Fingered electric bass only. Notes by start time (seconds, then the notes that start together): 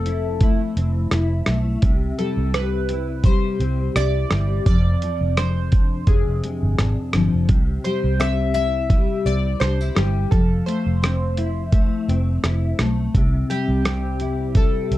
Already playing: F1
0.77 F1
1.12 F1
1.48 B1
1.83 C2
2.37 C2
3.60 C2
3.96 C2
4.31 G1
4.66 F1
5.21 F1
6.07 F1
6.27 F1
6.63 G1
6.79 G#1
7.14 G1
7.33 F1
7.49 C2
8.04 C2
9.26 C2
9.61 C2
9.97 G1
10.32 F1
10.86 F1
12.08 F1
12.44 F1
12.79 B1
13.14 C2
13.68 C2
14.91 C2